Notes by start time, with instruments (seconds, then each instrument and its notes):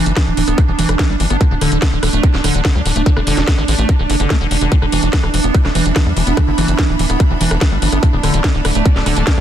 Already playing: string section B3 E4 E5 B5, ambient pad D4
0.06 analog synth bass F#1, acid bass E3, closed hi-hat
0.17 acid bass E3, kick, cross-stick, snare, closed hi-hat
0.27 analog synth bass D1, acid bass E3
0.37 analog synth bass D1, acid bass E3, open hi-hat
0.48 analog synth bass D1, acid bass B3, cross-stick, closed hi-hat
0.58 acid bass E4, kick, closed hi-hat
0.68 analog synth bass E1, acid bass E3
0.79 analog synth bass E1, acid bass E3, open hi-hat
0.89 analog synth bass E1, acid bass E3, cross-stick, closed hi-hat
0.99 acid bass E3, kick, snare, closed hi-hat
1.10 analog synth bass G1, acid bass G3
1.20 analog synth bass G1, acid bass E3, open hi-hat
1.30 analog synth bass G1, acid bass B3, cross-stick, closed hi-hat
1.41 acid bass D3, string section A3, kick, closed hi-hat
1.51 analog synth bass D1, acid bass C#3
1.61 analog synth bass D1, acid bass D3, cross-stick, open hi-hat
1.69 analog synth bass D1, acid bass D3, string section D4, closed hi-hat
1.75 string section D5 A5
1.82 acid bass D3, kick, snare, closed hi-hat
1.92 analog synth bass D1, acid bass D3
2.03 analog synth bass D1, acid bass D3, cross-stick, open hi-hat
2.13 analog synth bass D1, acid bass A3, closed hi-hat
2.23 acid bass D4, kick, closed hi-hat
2.34 analog synth bass D1, acid bass D3, snare
2.44 analog synth bass D1, acid bass D3, cross-stick, open hi-hat
2.54 analog synth bass D1, acid bass D3, closed hi-hat
2.65 kick, snare, closed hi-hat
2.75 analog synth bass D2, acid bass F#3, cross-stick
2.86 analog synth bass D1, acid bass D3, open hi-hat
2.96 analog synth bass D1, acid bass A3, closed hi-hat
3.06 acid bass D3, kick, closed hi-hat
3.17 analog synth bass E1, acid bass C#3, cross-stick
3.27 analog synth bass E1, acid bass D3, open hi-hat
3.37 analog synth bass E1, acid bass D3, snare, closed hi-hat
3.48 acid bass D3, kick, snare, closed hi-hat
3.58 analog synth bass A1, acid bass D3, cross-stick
3.68 analog synth bass A1, acid bass D3, open hi-hat
3.79 analog synth bass A1, acid bass A3, closed hi-hat
3.89 acid bass D4, kick, cross-stick, closed hi-hat
3.99 analog synth bass D1, acid bass D3
4.10 analog synth bass F#1, acid bass D3, open hi-hat
4.20 analog synth bass F#1, acid bass D3, closed hi-hat
4.30 acid bass A3, kick, cross-stick, snare, closed hi-hat
4.41 analog synth bass E1, acid bass D3
4.51 analog synth bass E1, acid bass D3, open hi-hat
4.61 analog synth bass E1, acid bass D3, closed hi-hat
4.72 acid bass E3, string section B3, kick, closed hi-hat
4.82 analog synth bass E1, acid bass D3, string section E4, cross-stick
4.89 analog synth bass E1, acid bass E3, string section E5, open hi-hat
5.03 analog synth bass E1, acid bass E3, closed hi-hat
5.13 kick, snare, closed hi-hat
5.23 analog synth bass E1, acid bass E3, cross-stick
5.34 analog synth bass E1, acid bass E3, open hi-hat
5.44 analog synth bass E1, acid bass B3, closed hi-hat
5.49 string section B5
5.54 acid bass E4, kick, closed hi-hat
5.65 analog synth bass E1, acid bass E3, cross-stick, snare
5.75 analog synth bass E1, acid bass E3, open hi-hat
5.86 analog synth bass E1, acid bass E3, closed hi-hat
5.96 acid bass E3, kick, cross-stick, snare, closed hi-hat
6.06 analog synth bass E2, acid bass G3
6.17 analog synth bass E1, acid bass E3, open hi-hat
6.27 analog synth bass E1, acid bass B3, closed hi-hat
6.37 acid bass E3, kick, cross-stick, closed hi-hat
6.48 analog synth bass F#1, acid bass D3
6.58 analog synth bass F#1, acid bass E3, open hi-hat
6.68 analog synth bass F#1, acid bass E3, closed hi-hat
6.79 acid bass E3, kick, cross-stick, snare, closed hi-hat
6.89 analog synth bass D1, acid bass E3
6.99 analog synth bass D1, acid bass E3, open hi-hat
7.10 analog synth bass D1, acid bass B3, cross-stick, closed hi-hat
7.20 acid bass E4, kick, closed hi-hat
7.30 analog synth bass E1, acid bass E3
7.41 analog synth bass E1, acid bass E3, open hi-hat
7.51 analog synth bass E1, acid bass E3, cross-stick, closed hi-hat
7.61 acid bass E3, kick, snare, closed hi-hat
7.72 analog synth bass G1, acid bass G3
7.82 analog synth bass G1, acid bass E3, open hi-hat
7.92 analog synth bass G1, acid bass B3, cross-stick, closed hi-hat
8.03 acid bass D3, string section A3, kick, closed hi-hat
8.09 string section D4 D5
8.13 analog synth bass D1, acid bass C#3
8.23 analog synth bass D1, acid bass D3, cross-stick, open hi-hat
8.34 analog synth bass D1, acid bass D3, string section A5, closed hi-hat
8.44 acid bass D3, kick, snare, closed hi-hat
8.54 analog synth bass D1, acid bass D3
8.65 analog synth bass D1, acid bass D3, cross-stick, open hi-hat
8.75 analog synth bass D1, acid bass A3, closed hi-hat
8.86 acid bass D4, kick, closed hi-hat
8.96 analog synth bass D1, acid bass D3, snare
9.06 analog synth bass D1, acid bass D3, cross-stick, open hi-hat
9.17 analog synth bass D1, acid bass D3, closed hi-hat
9.27 acid bass D3, kick, snare, closed hi-hat
9.37 analog synth bass D2, acid bass F#3, cross-stick